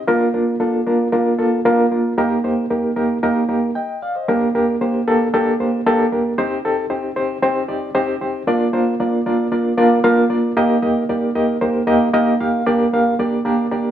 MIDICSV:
0, 0, Header, 1, 2, 480
1, 0, Start_track
1, 0, Key_signature, -2, "major"
1, 0, Tempo, 524476
1, 66, Time_signature, 4, 2, 24, 8
1, 12730, End_track
2, 0, Start_track
2, 0, Title_t, "Reed electric piano"
2, 0, Program_c, 0, 4
2, 68, Note_on_c, 0, 65, 104
2, 72, Note_on_c, 0, 58, 106
2, 72, Note_on_c, 0, 62, 100
2, 73, Note_on_c, 0, 70, 127
2, 258, Note_off_c, 0, 65, 0
2, 260, Note_off_c, 0, 58, 0
2, 260, Note_off_c, 0, 62, 0
2, 260, Note_off_c, 0, 70, 0
2, 309, Note_on_c, 0, 58, 92
2, 310, Note_on_c, 0, 62, 76
2, 310, Note_on_c, 0, 70, 93
2, 313, Note_on_c, 0, 65, 75
2, 499, Note_off_c, 0, 58, 0
2, 499, Note_off_c, 0, 62, 0
2, 499, Note_off_c, 0, 70, 0
2, 500, Note_off_c, 0, 65, 0
2, 549, Note_on_c, 0, 58, 74
2, 549, Note_on_c, 0, 62, 81
2, 551, Note_on_c, 0, 65, 70
2, 551, Note_on_c, 0, 69, 85
2, 739, Note_off_c, 0, 58, 0
2, 739, Note_off_c, 0, 62, 0
2, 740, Note_off_c, 0, 65, 0
2, 740, Note_off_c, 0, 69, 0
2, 793, Note_on_c, 0, 62, 91
2, 793, Note_on_c, 0, 70, 96
2, 796, Note_on_c, 0, 58, 94
2, 797, Note_on_c, 0, 65, 82
2, 981, Note_off_c, 0, 62, 0
2, 981, Note_off_c, 0, 70, 0
2, 983, Note_off_c, 0, 58, 0
2, 983, Note_off_c, 0, 65, 0
2, 1029, Note_on_c, 0, 62, 93
2, 1029, Note_on_c, 0, 70, 104
2, 1030, Note_on_c, 0, 58, 97
2, 1030, Note_on_c, 0, 65, 92
2, 1219, Note_off_c, 0, 70, 0
2, 1220, Note_off_c, 0, 58, 0
2, 1220, Note_off_c, 0, 62, 0
2, 1220, Note_off_c, 0, 65, 0
2, 1269, Note_on_c, 0, 62, 73
2, 1269, Note_on_c, 0, 65, 79
2, 1269, Note_on_c, 0, 69, 94
2, 1271, Note_on_c, 0, 58, 91
2, 1460, Note_off_c, 0, 62, 0
2, 1460, Note_off_c, 0, 65, 0
2, 1460, Note_off_c, 0, 69, 0
2, 1461, Note_off_c, 0, 58, 0
2, 1513, Note_on_c, 0, 58, 120
2, 1513, Note_on_c, 0, 65, 102
2, 1515, Note_on_c, 0, 62, 106
2, 1515, Note_on_c, 0, 70, 127
2, 1702, Note_off_c, 0, 58, 0
2, 1702, Note_off_c, 0, 65, 0
2, 1703, Note_off_c, 0, 62, 0
2, 1703, Note_off_c, 0, 70, 0
2, 1752, Note_on_c, 0, 58, 81
2, 1754, Note_on_c, 0, 62, 71
2, 1755, Note_on_c, 0, 70, 93
2, 1757, Note_on_c, 0, 65, 77
2, 1942, Note_off_c, 0, 58, 0
2, 1943, Note_off_c, 0, 62, 0
2, 1943, Note_off_c, 0, 70, 0
2, 1944, Note_off_c, 0, 65, 0
2, 1993, Note_on_c, 0, 67, 105
2, 1994, Note_on_c, 0, 58, 114
2, 1996, Note_on_c, 0, 63, 104
2, 1997, Note_on_c, 0, 70, 126
2, 2183, Note_off_c, 0, 58, 0
2, 2183, Note_off_c, 0, 67, 0
2, 2184, Note_off_c, 0, 63, 0
2, 2185, Note_off_c, 0, 70, 0
2, 2233, Note_on_c, 0, 63, 77
2, 2234, Note_on_c, 0, 58, 85
2, 2234, Note_on_c, 0, 67, 77
2, 2236, Note_on_c, 0, 72, 87
2, 2422, Note_off_c, 0, 63, 0
2, 2423, Note_off_c, 0, 58, 0
2, 2423, Note_off_c, 0, 67, 0
2, 2424, Note_off_c, 0, 72, 0
2, 2475, Note_on_c, 0, 63, 75
2, 2475, Note_on_c, 0, 70, 86
2, 2477, Note_on_c, 0, 58, 76
2, 2477, Note_on_c, 0, 67, 79
2, 2664, Note_off_c, 0, 63, 0
2, 2664, Note_off_c, 0, 70, 0
2, 2665, Note_off_c, 0, 58, 0
2, 2665, Note_off_c, 0, 67, 0
2, 2712, Note_on_c, 0, 70, 100
2, 2713, Note_on_c, 0, 63, 84
2, 2714, Note_on_c, 0, 58, 96
2, 2714, Note_on_c, 0, 67, 83
2, 2902, Note_off_c, 0, 70, 0
2, 2903, Note_off_c, 0, 58, 0
2, 2903, Note_off_c, 0, 63, 0
2, 2903, Note_off_c, 0, 67, 0
2, 2955, Note_on_c, 0, 63, 103
2, 2956, Note_on_c, 0, 58, 114
2, 2956, Note_on_c, 0, 67, 88
2, 2957, Note_on_c, 0, 70, 122
2, 3144, Note_off_c, 0, 58, 0
2, 3144, Note_off_c, 0, 63, 0
2, 3144, Note_off_c, 0, 67, 0
2, 3145, Note_off_c, 0, 70, 0
2, 3190, Note_on_c, 0, 58, 87
2, 3190, Note_on_c, 0, 67, 78
2, 3192, Note_on_c, 0, 63, 80
2, 3194, Note_on_c, 0, 70, 94
2, 3381, Note_off_c, 0, 58, 0
2, 3381, Note_off_c, 0, 67, 0
2, 3383, Note_off_c, 0, 63, 0
2, 3384, Note_off_c, 0, 70, 0
2, 3435, Note_on_c, 0, 79, 73
2, 3440, Note_on_c, 0, 75, 61
2, 3662, Note_off_c, 0, 79, 0
2, 3665, Note_off_c, 0, 75, 0
2, 3683, Note_on_c, 0, 77, 77
2, 3685, Note_on_c, 0, 74, 65
2, 3792, Note_off_c, 0, 77, 0
2, 3794, Note_off_c, 0, 74, 0
2, 3802, Note_on_c, 0, 75, 60
2, 3809, Note_on_c, 0, 72, 57
2, 3919, Note_on_c, 0, 62, 101
2, 3920, Note_on_c, 0, 67, 91
2, 3922, Note_on_c, 0, 58, 116
2, 3922, Note_on_c, 0, 70, 124
2, 4026, Note_off_c, 0, 75, 0
2, 4029, Note_off_c, 0, 72, 0
2, 4106, Note_off_c, 0, 62, 0
2, 4107, Note_off_c, 0, 67, 0
2, 4107, Note_off_c, 0, 70, 0
2, 4108, Note_off_c, 0, 58, 0
2, 4162, Note_on_c, 0, 58, 94
2, 4164, Note_on_c, 0, 67, 88
2, 4165, Note_on_c, 0, 62, 88
2, 4165, Note_on_c, 0, 70, 105
2, 4348, Note_off_c, 0, 58, 0
2, 4349, Note_off_c, 0, 62, 0
2, 4349, Note_off_c, 0, 67, 0
2, 4349, Note_off_c, 0, 70, 0
2, 4403, Note_on_c, 0, 58, 91
2, 4404, Note_on_c, 0, 67, 79
2, 4405, Note_on_c, 0, 62, 72
2, 4405, Note_on_c, 0, 72, 90
2, 4588, Note_off_c, 0, 58, 0
2, 4589, Note_off_c, 0, 62, 0
2, 4589, Note_off_c, 0, 67, 0
2, 4589, Note_off_c, 0, 72, 0
2, 4645, Note_on_c, 0, 62, 91
2, 4645, Note_on_c, 0, 67, 94
2, 4646, Note_on_c, 0, 69, 114
2, 4647, Note_on_c, 0, 58, 103
2, 4829, Note_off_c, 0, 62, 0
2, 4829, Note_off_c, 0, 67, 0
2, 4830, Note_off_c, 0, 58, 0
2, 4830, Note_off_c, 0, 69, 0
2, 4885, Note_on_c, 0, 62, 102
2, 4885, Note_on_c, 0, 69, 118
2, 4886, Note_on_c, 0, 58, 101
2, 4888, Note_on_c, 0, 67, 103
2, 5069, Note_off_c, 0, 58, 0
2, 5069, Note_off_c, 0, 62, 0
2, 5069, Note_off_c, 0, 69, 0
2, 5070, Note_off_c, 0, 67, 0
2, 5124, Note_on_c, 0, 62, 74
2, 5125, Note_on_c, 0, 67, 79
2, 5127, Note_on_c, 0, 58, 91
2, 5127, Note_on_c, 0, 72, 95
2, 5308, Note_off_c, 0, 62, 0
2, 5309, Note_off_c, 0, 67, 0
2, 5310, Note_off_c, 0, 58, 0
2, 5310, Note_off_c, 0, 72, 0
2, 5367, Note_on_c, 0, 58, 115
2, 5367, Note_on_c, 0, 62, 111
2, 5369, Note_on_c, 0, 69, 127
2, 5371, Note_on_c, 0, 67, 108
2, 5550, Note_off_c, 0, 58, 0
2, 5550, Note_off_c, 0, 62, 0
2, 5551, Note_off_c, 0, 69, 0
2, 5552, Note_off_c, 0, 67, 0
2, 5603, Note_on_c, 0, 58, 86
2, 5604, Note_on_c, 0, 67, 73
2, 5604, Note_on_c, 0, 70, 90
2, 5606, Note_on_c, 0, 62, 75
2, 5788, Note_off_c, 0, 58, 0
2, 5788, Note_off_c, 0, 67, 0
2, 5788, Note_off_c, 0, 70, 0
2, 5789, Note_off_c, 0, 62, 0
2, 5841, Note_on_c, 0, 72, 121
2, 5842, Note_on_c, 0, 60, 111
2, 5842, Note_on_c, 0, 63, 109
2, 5843, Note_on_c, 0, 67, 106
2, 6026, Note_off_c, 0, 72, 0
2, 6027, Note_off_c, 0, 60, 0
2, 6027, Note_off_c, 0, 63, 0
2, 6028, Note_off_c, 0, 67, 0
2, 6086, Note_on_c, 0, 67, 83
2, 6086, Note_on_c, 0, 69, 106
2, 6088, Note_on_c, 0, 60, 82
2, 6088, Note_on_c, 0, 63, 87
2, 6269, Note_off_c, 0, 67, 0
2, 6269, Note_off_c, 0, 69, 0
2, 6270, Note_off_c, 0, 60, 0
2, 6270, Note_off_c, 0, 63, 0
2, 6315, Note_on_c, 0, 72, 91
2, 6316, Note_on_c, 0, 63, 86
2, 6316, Note_on_c, 0, 67, 80
2, 6318, Note_on_c, 0, 60, 92
2, 6503, Note_off_c, 0, 63, 0
2, 6503, Note_off_c, 0, 72, 0
2, 6504, Note_off_c, 0, 67, 0
2, 6505, Note_off_c, 0, 60, 0
2, 6555, Note_on_c, 0, 60, 99
2, 6555, Note_on_c, 0, 63, 85
2, 6555, Note_on_c, 0, 67, 92
2, 6556, Note_on_c, 0, 72, 105
2, 6743, Note_off_c, 0, 60, 0
2, 6743, Note_off_c, 0, 63, 0
2, 6743, Note_off_c, 0, 67, 0
2, 6743, Note_off_c, 0, 72, 0
2, 6795, Note_on_c, 0, 60, 119
2, 6795, Note_on_c, 0, 63, 98
2, 6795, Note_on_c, 0, 67, 95
2, 6797, Note_on_c, 0, 72, 118
2, 6983, Note_off_c, 0, 60, 0
2, 6983, Note_off_c, 0, 63, 0
2, 6983, Note_off_c, 0, 67, 0
2, 6984, Note_off_c, 0, 72, 0
2, 7033, Note_on_c, 0, 60, 82
2, 7033, Note_on_c, 0, 63, 83
2, 7033, Note_on_c, 0, 67, 81
2, 7033, Note_on_c, 0, 74, 97
2, 7222, Note_off_c, 0, 60, 0
2, 7222, Note_off_c, 0, 63, 0
2, 7222, Note_off_c, 0, 67, 0
2, 7222, Note_off_c, 0, 74, 0
2, 7272, Note_on_c, 0, 63, 102
2, 7273, Note_on_c, 0, 60, 120
2, 7273, Note_on_c, 0, 72, 123
2, 7274, Note_on_c, 0, 67, 111
2, 7461, Note_off_c, 0, 60, 0
2, 7461, Note_off_c, 0, 63, 0
2, 7462, Note_off_c, 0, 67, 0
2, 7462, Note_off_c, 0, 72, 0
2, 7517, Note_on_c, 0, 60, 85
2, 7517, Note_on_c, 0, 63, 73
2, 7517, Note_on_c, 0, 67, 86
2, 7517, Note_on_c, 0, 72, 93
2, 7703, Note_off_c, 0, 60, 0
2, 7703, Note_off_c, 0, 63, 0
2, 7703, Note_off_c, 0, 67, 0
2, 7703, Note_off_c, 0, 72, 0
2, 7754, Note_on_c, 0, 58, 108
2, 7754, Note_on_c, 0, 70, 95
2, 7755, Note_on_c, 0, 62, 113
2, 7757, Note_on_c, 0, 65, 100
2, 7757, Note_on_c, 0, 74, 123
2, 7942, Note_off_c, 0, 58, 0
2, 7942, Note_off_c, 0, 62, 0
2, 7942, Note_off_c, 0, 70, 0
2, 7943, Note_off_c, 0, 65, 0
2, 7943, Note_off_c, 0, 74, 0
2, 7990, Note_on_c, 0, 65, 83
2, 7991, Note_on_c, 0, 62, 88
2, 7992, Note_on_c, 0, 58, 86
2, 7992, Note_on_c, 0, 70, 86
2, 7992, Note_on_c, 0, 72, 102
2, 8179, Note_off_c, 0, 65, 0
2, 8180, Note_off_c, 0, 58, 0
2, 8180, Note_off_c, 0, 62, 0
2, 8180, Note_off_c, 0, 70, 0
2, 8181, Note_off_c, 0, 72, 0
2, 8236, Note_on_c, 0, 58, 93
2, 8236, Note_on_c, 0, 65, 78
2, 8237, Note_on_c, 0, 62, 78
2, 8237, Note_on_c, 0, 70, 79
2, 8237, Note_on_c, 0, 74, 88
2, 8422, Note_off_c, 0, 58, 0
2, 8422, Note_off_c, 0, 65, 0
2, 8422, Note_off_c, 0, 70, 0
2, 8423, Note_off_c, 0, 62, 0
2, 8423, Note_off_c, 0, 74, 0
2, 8477, Note_on_c, 0, 58, 98
2, 8477, Note_on_c, 0, 65, 93
2, 8477, Note_on_c, 0, 70, 82
2, 8477, Note_on_c, 0, 74, 99
2, 8478, Note_on_c, 0, 62, 90
2, 8662, Note_off_c, 0, 65, 0
2, 8662, Note_off_c, 0, 70, 0
2, 8662, Note_off_c, 0, 74, 0
2, 8663, Note_off_c, 0, 58, 0
2, 8663, Note_off_c, 0, 62, 0
2, 8711, Note_on_c, 0, 74, 92
2, 8712, Note_on_c, 0, 58, 86
2, 8713, Note_on_c, 0, 62, 79
2, 8713, Note_on_c, 0, 65, 80
2, 8713, Note_on_c, 0, 70, 79
2, 8899, Note_off_c, 0, 74, 0
2, 8900, Note_off_c, 0, 58, 0
2, 8900, Note_off_c, 0, 62, 0
2, 8900, Note_off_c, 0, 65, 0
2, 8900, Note_off_c, 0, 70, 0
2, 8947, Note_on_c, 0, 58, 124
2, 8947, Note_on_c, 0, 62, 109
2, 8948, Note_on_c, 0, 65, 104
2, 8948, Note_on_c, 0, 74, 127
2, 8950, Note_on_c, 0, 70, 109
2, 9137, Note_off_c, 0, 58, 0
2, 9137, Note_off_c, 0, 62, 0
2, 9137, Note_off_c, 0, 65, 0
2, 9137, Note_off_c, 0, 74, 0
2, 9138, Note_off_c, 0, 70, 0
2, 9187, Note_on_c, 0, 62, 107
2, 9187, Note_on_c, 0, 65, 109
2, 9189, Note_on_c, 0, 70, 112
2, 9189, Note_on_c, 0, 77, 127
2, 9190, Note_on_c, 0, 58, 127
2, 9377, Note_off_c, 0, 62, 0
2, 9377, Note_off_c, 0, 65, 0
2, 9377, Note_off_c, 0, 70, 0
2, 9377, Note_off_c, 0, 77, 0
2, 9378, Note_off_c, 0, 58, 0
2, 9425, Note_on_c, 0, 62, 79
2, 9425, Note_on_c, 0, 65, 73
2, 9427, Note_on_c, 0, 58, 92
2, 9427, Note_on_c, 0, 70, 80
2, 9428, Note_on_c, 0, 74, 100
2, 9615, Note_off_c, 0, 65, 0
2, 9616, Note_off_c, 0, 58, 0
2, 9616, Note_off_c, 0, 62, 0
2, 9616, Note_off_c, 0, 70, 0
2, 9617, Note_off_c, 0, 74, 0
2, 9671, Note_on_c, 0, 67, 111
2, 9672, Note_on_c, 0, 58, 123
2, 9672, Note_on_c, 0, 63, 105
2, 9672, Note_on_c, 0, 70, 112
2, 9674, Note_on_c, 0, 75, 126
2, 9859, Note_off_c, 0, 58, 0
2, 9859, Note_off_c, 0, 63, 0
2, 9859, Note_off_c, 0, 67, 0
2, 9859, Note_off_c, 0, 70, 0
2, 9860, Note_off_c, 0, 75, 0
2, 9906, Note_on_c, 0, 75, 98
2, 9907, Note_on_c, 0, 58, 92
2, 9907, Note_on_c, 0, 63, 82
2, 9907, Note_on_c, 0, 70, 79
2, 9908, Note_on_c, 0, 67, 90
2, 10096, Note_off_c, 0, 58, 0
2, 10096, Note_off_c, 0, 63, 0
2, 10096, Note_off_c, 0, 70, 0
2, 10096, Note_off_c, 0, 75, 0
2, 10097, Note_off_c, 0, 67, 0
2, 10153, Note_on_c, 0, 58, 89
2, 10153, Note_on_c, 0, 67, 79
2, 10153, Note_on_c, 0, 70, 83
2, 10153, Note_on_c, 0, 74, 96
2, 10154, Note_on_c, 0, 63, 82
2, 10339, Note_off_c, 0, 58, 0
2, 10339, Note_off_c, 0, 67, 0
2, 10339, Note_off_c, 0, 70, 0
2, 10339, Note_off_c, 0, 74, 0
2, 10340, Note_off_c, 0, 63, 0
2, 10389, Note_on_c, 0, 63, 90
2, 10390, Note_on_c, 0, 67, 87
2, 10391, Note_on_c, 0, 58, 96
2, 10392, Note_on_c, 0, 75, 105
2, 10393, Note_on_c, 0, 70, 86
2, 10577, Note_off_c, 0, 63, 0
2, 10577, Note_off_c, 0, 67, 0
2, 10578, Note_off_c, 0, 58, 0
2, 10578, Note_off_c, 0, 75, 0
2, 10579, Note_off_c, 0, 70, 0
2, 10628, Note_on_c, 0, 58, 86
2, 10628, Note_on_c, 0, 63, 83
2, 10628, Note_on_c, 0, 67, 76
2, 10628, Note_on_c, 0, 72, 98
2, 10629, Note_on_c, 0, 70, 85
2, 10816, Note_off_c, 0, 58, 0
2, 10816, Note_off_c, 0, 63, 0
2, 10816, Note_off_c, 0, 67, 0
2, 10816, Note_off_c, 0, 72, 0
2, 10817, Note_off_c, 0, 70, 0
2, 10864, Note_on_c, 0, 58, 125
2, 10864, Note_on_c, 0, 75, 127
2, 10865, Note_on_c, 0, 63, 102
2, 10865, Note_on_c, 0, 70, 110
2, 10867, Note_on_c, 0, 67, 112
2, 11054, Note_off_c, 0, 58, 0
2, 11054, Note_off_c, 0, 75, 0
2, 11055, Note_off_c, 0, 63, 0
2, 11055, Note_off_c, 0, 70, 0
2, 11056, Note_off_c, 0, 67, 0
2, 11106, Note_on_c, 0, 58, 121
2, 11106, Note_on_c, 0, 63, 116
2, 11106, Note_on_c, 0, 67, 109
2, 11107, Note_on_c, 0, 70, 120
2, 11108, Note_on_c, 0, 82, 83
2, 11109, Note_on_c, 0, 75, 127
2, 11295, Note_off_c, 0, 58, 0
2, 11295, Note_off_c, 0, 63, 0
2, 11295, Note_off_c, 0, 67, 0
2, 11295, Note_off_c, 0, 70, 0
2, 11297, Note_off_c, 0, 75, 0
2, 11329, Note_off_c, 0, 82, 0
2, 11351, Note_on_c, 0, 58, 89
2, 11352, Note_on_c, 0, 67, 81
2, 11352, Note_on_c, 0, 70, 78
2, 11352, Note_on_c, 0, 77, 106
2, 11353, Note_on_c, 0, 63, 83
2, 11538, Note_off_c, 0, 58, 0
2, 11538, Note_off_c, 0, 67, 0
2, 11538, Note_off_c, 0, 70, 0
2, 11539, Note_off_c, 0, 63, 0
2, 11572, Note_off_c, 0, 77, 0
2, 11591, Note_on_c, 0, 62, 104
2, 11591, Note_on_c, 0, 67, 102
2, 11592, Note_on_c, 0, 58, 110
2, 11592, Note_on_c, 0, 74, 127
2, 11593, Note_on_c, 0, 70, 108
2, 11778, Note_off_c, 0, 58, 0
2, 11778, Note_off_c, 0, 62, 0
2, 11778, Note_off_c, 0, 67, 0
2, 11778, Note_off_c, 0, 74, 0
2, 11779, Note_off_c, 0, 70, 0
2, 11836, Note_on_c, 0, 58, 95
2, 11837, Note_on_c, 0, 62, 84
2, 11837, Note_on_c, 0, 67, 81
2, 11839, Note_on_c, 0, 70, 89
2, 11839, Note_on_c, 0, 77, 102
2, 12020, Note_off_c, 0, 58, 0
2, 12021, Note_off_c, 0, 62, 0
2, 12021, Note_off_c, 0, 67, 0
2, 12022, Note_off_c, 0, 70, 0
2, 12022, Note_off_c, 0, 77, 0
2, 12073, Note_on_c, 0, 58, 85
2, 12076, Note_on_c, 0, 62, 88
2, 12076, Note_on_c, 0, 74, 104
2, 12077, Note_on_c, 0, 67, 81
2, 12078, Note_on_c, 0, 70, 85
2, 12259, Note_off_c, 0, 58, 0
2, 12260, Note_off_c, 0, 62, 0
2, 12260, Note_off_c, 0, 67, 0
2, 12260, Note_off_c, 0, 74, 0
2, 12261, Note_off_c, 0, 70, 0
2, 12310, Note_on_c, 0, 58, 105
2, 12311, Note_on_c, 0, 62, 93
2, 12311, Note_on_c, 0, 67, 92
2, 12311, Note_on_c, 0, 74, 106
2, 12312, Note_on_c, 0, 70, 95
2, 12497, Note_off_c, 0, 58, 0
2, 12498, Note_off_c, 0, 62, 0
2, 12498, Note_off_c, 0, 67, 0
2, 12498, Note_off_c, 0, 70, 0
2, 12498, Note_off_c, 0, 74, 0
2, 12551, Note_on_c, 0, 67, 82
2, 12551, Note_on_c, 0, 70, 84
2, 12552, Note_on_c, 0, 62, 76
2, 12553, Note_on_c, 0, 58, 89
2, 12553, Note_on_c, 0, 74, 96
2, 12730, Note_off_c, 0, 58, 0
2, 12730, Note_off_c, 0, 62, 0
2, 12730, Note_off_c, 0, 67, 0
2, 12730, Note_off_c, 0, 70, 0
2, 12730, Note_off_c, 0, 74, 0
2, 12730, End_track
0, 0, End_of_file